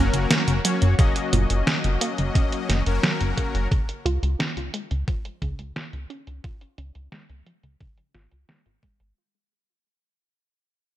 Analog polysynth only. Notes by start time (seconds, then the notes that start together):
Already playing: F#3 A#3 C#4 F#4 A#4
0.65 F#3 A#3 C#4 F#4 C#5
0.99 F#3 A#3 C#4 F#4 D#5
2.86 F#3 A#3 C#4 F#4 A#4